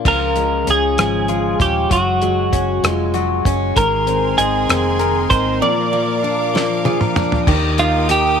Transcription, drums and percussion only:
0.05 kick, crash
0.36 closed hi-hat
0.67 closed hi-hat
0.98 cross-stick, closed hi-hat
1.28 closed hi-hat
1.60 kick, closed hi-hat
1.91 kick, closed hi-hat
2.22 closed hi-hat
2.53 kick, closed hi-hat
2.84 cross-stick, closed hi-hat
3.14 closed hi-hat
3.45 kick, closed hi-hat
3.77 kick, closed hi-hat
4.07 closed hi-hat
4.38 closed hi-hat
4.69 cross-stick, closed hi-hat
4.99 closed hi-hat
5.31 kick, closed hi-hat
6.56 snare
6.85 high tom
7.01 mid tom
7.16 mid tom
7.32 floor tom
7.47 kick, crash
7.78 closed hi-hat
8.09 closed hi-hat

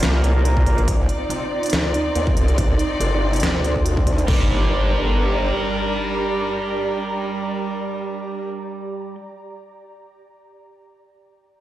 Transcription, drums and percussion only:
0.03 snare, closed hi-hat
0.14 snare
0.24 closed hi-hat
0.45 closed hi-hat
0.57 kick
0.66 kick, closed hi-hat
0.78 closed hi-hat
0.88 kick, closed hi-hat
1.09 closed hi-hat
1.30 closed hi-hat
1.63 closed hi-hat
1.66 closed hi-hat
1.70 snare, closed hi-hat
1.73 closed hi-hat
1.94 closed hi-hat
2.15 closed hi-hat
2.27 kick
2.37 closed hi-hat
2.48 closed hi-hat
2.58 kick, closed hi-hat
2.79 closed hi-hat
3.01 closed hi-hat
3.33 closed hi-hat
3.36 closed hi-hat
3.40 snare, closed hi-hat
3.43 closed hi-hat
3.55 snare
3.64 closed hi-hat
3.76 kick
3.86 closed hi-hat
3.97 kick
4.07 kick, closed hi-hat
4.18 closed hi-hat
4.28 kick, crash

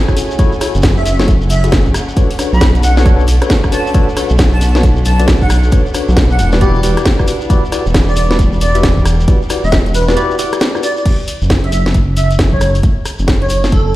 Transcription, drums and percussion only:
0.08 kick, cross-stick, shekere
0.17 open hi-hat, shekere
0.31 shekere
0.39 kick, closed hi-hat, shekere
0.52 shekere
0.61 cross-stick, open hi-hat, shekere
0.75 shekere
0.82 kick, snare, closed hi-hat, shekere
0.97 shekere
1.06 open hi-hat, shekere
1.20 snare, shekere
1.28 kick, closed hi-hat, shekere
1.42 shekere
1.50 open hi-hat, shekere
1.64 closed hi-hat, shekere
1.72 kick, snare, closed hi-hat, shekere
1.86 kick, shekere
1.94 cross-stick, open hi-hat, shekere
2.09 shekere
2.17 kick, closed hi-hat, shekere
2.31 open hi-hat, shekere
2.39 cross-stick, open hi-hat, shekere
2.54 shekere
2.61 kick, snare, closed hi-hat, shekere
2.75 closed hi-hat, shekere
2.83 open hi-hat, shekere
2.97 snare, shekere
3.06 kick, closed hi-hat, shekere
3.19 shekere
3.28 open hi-hat, shekere
3.42 cross-stick, closed hi-hat, shekere
3.50 kick, snare, closed hi-hat, shekere
3.63 kick, cross-stick, shekere
3.72 open hi-hat, shekere
3.86 shekere
3.94 kick, closed hi-hat, shekere
4.09 shekere
4.17 cross-stick, open hi-hat, shekere
4.29 shekere
4.38 kick, snare, closed hi-hat, shekere
4.53 shekere
4.61 open hi-hat, shekere
4.75 snare, shekere
4.83 kick, closed hi-hat, shekere
4.96 shekere
5.05 open hi-hat, shekere
5.19 closed hi-hat, shekere
5.28 kick, snare, closed hi-hat, shekere
5.41 kick, shekere
5.50 cross-stick, open hi-hat, shekere
5.63 shekere
5.71 kick, closed hi-hat, shekere
5.86 shekere
5.94 cross-stick, open hi-hat, shekere
6.09 shekere
6.17 kick, snare, closed hi-hat, shekere
6.31 shekere
6.39 open hi-hat, shekere
6.52 snare, shekere
6.61 kick, closed hi-hat, shekere
6.74 shekere
6.83 open hi-hat, shekere
6.97 cross-stick, closed hi-hat, shekere
7.05 kick, snare, closed hi-hat, shekere
7.19 kick, cross-stick, shekere
7.28 open hi-hat, shekere
7.41 shekere
7.50 kick, closed hi-hat, shekere
7.65 shekere
7.72 cross-stick, open hi-hat, shekere
7.86 shekere
7.94 kick, snare, closed hi-hat, shekere
8.08 shekere
8.16 open hi-hat, shekere
8.31 snare, shekere
8.39 kick, closed hi-hat, shekere
8.53 shekere
8.61 open hi-hat, shekere
8.75 closed hi-hat, shekere
8.83 kick, snare, closed hi-hat, shekere
8.97 kick, shekere
9.05 cross-stick, open hi-hat, shekere
9.20 shekere
9.28 kick, closed hi-hat, shekere
9.42 shekere
9.50 cross-stick, open hi-hat, shekere
9.64 shekere
9.72 kick, snare, closed hi-hat, shekere
9.86 closed hi-hat, shekere
9.94 open hi-hat, shekere
10.08 snare, shekere
10.16 closed hi-hat, shekere
10.31 shekere
10.39 open hi-hat, shekere
10.53 cross-stick, closed hi-hat, shekere
10.60 snare, closed hi-hat, shekere
10.75 cross-stick, shekere
10.83 open hi-hat, shekere
10.97 shekere
11.05 kick, closed hi-hat, crash, shekere
11.28 open hi-hat, shekere
11.42 shekere
11.50 kick, snare, closed hi-hat, shekere
11.64 closed hi-hat
11.72 open hi-hat, shekere
11.86 snare, shekere
11.94 kick, closed hi-hat, shekere
12.17 open hi-hat, shekere
12.31 closed hi-hat, shekere
12.39 kick, snare, closed hi-hat, shekere
12.53 kick
12.61 cross-stick, open hi-hat, shekere
12.75 open hi-hat, shekere
12.83 kick, closed hi-hat, shekere
13.05 cross-stick, open hi-hat, shekere
13.19 shekere
13.28 kick, snare, closed hi-hat, shekere
13.42 closed hi-hat
13.49 open hi-hat, shekere
13.64 snare, shekere
13.72 kick, closed hi-hat, shekere

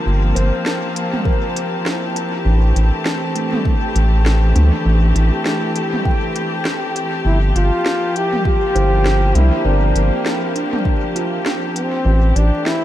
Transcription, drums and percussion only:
0.36 closed hi-hat
0.66 snare
0.96 closed hi-hat
1.14 mid tom
1.25 kick
1.56 closed hi-hat
1.86 snare
2.16 closed hi-hat
2.76 closed hi-hat
3.06 snare
3.36 closed hi-hat
3.53 mid tom
3.65 kick
3.96 closed hi-hat
4.26 snare
4.56 closed hi-hat, mid tom
5.16 closed hi-hat
5.46 snare
5.76 closed hi-hat
5.93 mid tom
6.05 kick
6.36 closed hi-hat
6.65 snare
6.96 closed hi-hat
7.56 closed hi-hat
7.86 snare
8.16 closed hi-hat
8.33 mid tom
8.45 kick
8.76 closed hi-hat
9.06 snare
9.35 closed hi-hat, mid tom
9.96 closed hi-hat
10.26 snare
10.56 closed hi-hat
10.73 mid tom
10.85 kick
11.16 closed hi-hat
11.46 snare
11.76 closed hi-hat
12.36 closed hi-hat
12.66 snare

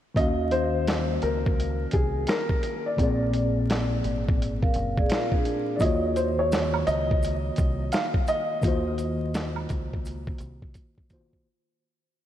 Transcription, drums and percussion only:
0.16 kick, closed hi-hat
0.51 closed hi-hat
0.87 snare, closed hi-hat
1.22 closed hi-hat
1.46 kick
1.60 closed hi-hat
1.91 kick, closed hi-hat
2.27 snare, closed hi-hat
2.49 kick
2.63 closed hi-hat
2.98 kick, closed hi-hat
3.33 closed hi-hat
3.70 snare, closed hi-hat
4.04 closed hi-hat
4.28 kick
4.42 closed hi-hat
4.62 kick
4.74 closed hi-hat
4.97 kick
5.10 snare, closed hi-hat
5.32 kick
5.45 closed hi-hat
5.79 kick, closed hi-hat, maracas
6.16 closed hi-hat, maracas
6.52 snare, closed hi-hat, maracas
6.74 high woodblock
6.87 closed hi-hat, maracas
7.11 kick
7.23 closed hi-hat, maracas
7.56 kick, closed hi-hat, maracas
7.92 snare, closed hi-hat, maracas
8.14 kick
8.27 closed hi-hat, maracas
8.62 kick, closed hi-hat, maracas
8.98 closed hi-hat, maracas
9.34 snare, closed hi-hat, maracas
9.56 high woodblock
9.69 kick, closed hi-hat, maracas
9.93 kick
10.05 closed hi-hat, maracas
10.27 kick
10.38 closed hi-hat, maracas
10.62 kick
10.74 kick, closed hi-hat, maracas
10.98 kick
11.10 kick, closed hi-hat, maracas
11.33 kick

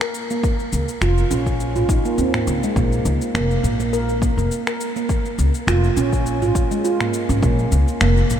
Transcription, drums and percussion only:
0.01 finger snap, cabasa
0.14 cabasa
0.30 cabasa
0.43 kick, cabasa
0.60 cabasa
0.73 cabasa
0.89 cabasa
1.02 finger snap, cabasa
1.18 cabasa
1.31 cabasa
1.46 kick, cabasa
1.60 cabasa
1.76 mid tom, cabasa
1.89 kick, cabasa
2.05 cabasa
2.18 cabasa
2.34 finger snap, mid tom, cabasa
2.47 cabasa
2.63 cabasa
2.76 kick, cabasa
2.92 cabasa
3.06 cabasa
3.22 cabasa
3.35 finger snap, cabasa
3.51 cabasa
3.64 mid tom, cabasa
3.80 cabasa
3.94 cabasa
4.09 cabasa
4.22 kick, cabasa
4.39 cabasa
4.52 cabasa
4.67 finger snap, cabasa
4.81 cabasa
4.96 cabasa
5.09 kick, cabasa
5.25 cabasa
5.39 cabasa
5.55 cabasa
5.68 finger snap, cabasa
5.84 cabasa
5.97 cabasa
6.13 kick, cabasa
6.26 cabasa
6.42 mid tom, cabasa
6.55 kick, cabasa
6.71 cabasa
6.85 cabasa
7.01 finger snap, mid tom, cabasa
7.14 cabasa
7.30 cabasa
7.43 kick, cabasa
7.59 cabasa
7.72 cabasa
7.88 cabasa
8.01 finger snap, cabasa
8.17 cabasa
8.30 mid tom, cabasa

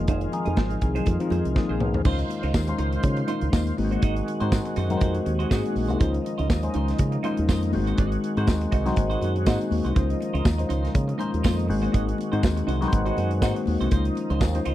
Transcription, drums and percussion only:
0.08 kick, closed hi-hat
0.21 closed hi-hat
0.32 closed hi-hat, muted conga
0.46 closed hi-hat
0.57 kick, snare, high conga
0.70 closed hi-hat
0.81 kick, closed hi-hat
0.96 closed hi-hat, low conga
1.06 kick, closed hi-hat, muted conga
1.20 closed hi-hat
1.30 closed hi-hat, muted conga
1.45 closed hi-hat
1.56 kick, snare, high conga
1.80 mid tom, high conga
1.94 floor tom
2.05 kick, crash
2.19 closed hi-hat
2.30 closed hi-hat, muted conga
2.43 closed hi-hat
2.54 kick, snare, tambourine, high conga
2.67 closed hi-hat
2.79 closed hi-hat
2.93 closed hi-hat
3.03 kick, closed hi-hat, muted conga
3.17 closed hi-hat
3.28 closed hi-hat, muted conga
3.41 closed hi-hat
3.53 kick, snare, tambourine, high conga
3.67 closed hi-hat
3.78 open hi-hat, high conga
3.92 closed hi-hat, high conga
4.02 kick, closed hi-hat
4.16 closed hi-hat
4.28 closed hi-hat, muted conga
4.40 closed hi-hat
4.52 kick, snare, tambourine, high conga
4.65 closed hi-hat
4.76 closed hi-hat
4.90 closed hi-hat, low conga
5.01 kick, closed hi-hat, muted conga
5.15 closed hi-hat
5.26 closed hi-hat, muted conga
5.40 closed hi-hat
5.51 kick, snare, tambourine, high conga
5.66 closed hi-hat
5.76 open hi-hat, high conga
5.90 closed hi-hat, high conga
6.00 kick, closed hi-hat
6.14 closed hi-hat
6.26 closed hi-hat
6.39 closed hi-hat
6.50 kick, snare, tambourine, high conga
6.63 closed hi-hat
6.74 closed hi-hat
6.88 snare, closed hi-hat
6.99 kick, closed hi-hat, muted conga
7.12 closed hi-hat
7.24 closed hi-hat, muted conga
7.37 closed hi-hat
7.48 kick, snare, tambourine, high conga
7.63 closed hi-hat
7.73 open hi-hat, high conga
7.87 closed hi-hat, high conga
7.98 kick, closed hi-hat
8.12 closed hi-hat
8.24 closed hi-hat
8.37 closed hi-hat
8.47 kick, snare, tambourine, high conga
8.61 closed hi-hat
8.72 kick, closed hi-hat
8.86 snare, closed hi-hat, low conga
8.96 kick, closed hi-hat, muted conga
9.11 closed hi-hat
9.22 closed hi-hat, muted conga
9.36 closed hi-hat
9.46 kick, snare, tambourine, high conga
9.61 closed hi-hat
9.71 open hi-hat, high conga
9.85 closed hi-hat, high conga
9.96 kick, closed hi-hat
10.10 closed hi-hat
10.20 closed hi-hat, muted conga
10.35 closed hi-hat
10.45 kick, snare, tambourine, high conga
10.59 closed hi-hat
10.70 closed hi-hat
10.85 snare, closed hi-hat
10.95 kick, closed hi-hat, muted conga
11.09 closed hi-hat
11.19 closed hi-hat, muted conga
11.34 closed hi-hat
11.44 kick, snare, tambourine, high conga
11.59 closed hi-hat
11.69 open hi-hat, high conga
11.83 closed hi-hat, high conga
11.94 kick, closed hi-hat
12.09 closed hi-hat
12.18 closed hi-hat, muted conga
12.33 closed hi-hat
12.43 kick, snare, tambourine, high conga
12.57 closed hi-hat
12.69 closed hi-hat
12.82 snare, closed hi-hat, low conga
12.92 kick, closed hi-hat, muted conga
13.06 closed hi-hat
13.17 closed hi-hat, muted conga
13.31 closed hi-hat
13.42 kick, snare, tambourine, high conga
13.56 closed hi-hat
13.66 open hi-hat, high conga
13.79 closed hi-hat, high conga
13.91 kick, closed hi-hat
14.05 closed hi-hat
14.15 closed hi-hat, muted conga
14.30 closed hi-hat
14.41 kick, snare, tambourine, high conga
14.55 closed hi-hat
14.66 closed hi-hat

